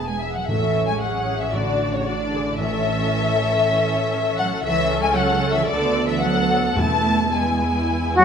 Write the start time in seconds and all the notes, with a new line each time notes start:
Already playing: E1 B3 G#4
0.06 G#3 G#5
0.19 E3 E5
0.33 F#3 F#5
0.46 A1 A2 E3 E5
0.50 C#4 A4 E5
0.87 G#3 G#5
1.01 F#3 G#4 F#5
1.40 E3 E5
1.53 A2 D3 D4 F#4 D5
1.93 C#3 C#5
2.06 D3 D4 F#4 D5
2.33 G#4
2.58 A2 E3 C#4 A4 E5
4.38 F#3 F#5
4.64 C#2 E3 C#4 A4 E5
5.03 G#3 G#5
5.15 F#3 F#5
5.54 E3 E5
5.67 D2 D3 B3 A4 D5
6.07 E3 E5
6.21 F#3 B3 A4 F#5
6.77 E2 A3 B3 E4 A5
7.34 G#3 B3 E4 G#5
8.17 F#3 F#4 F#5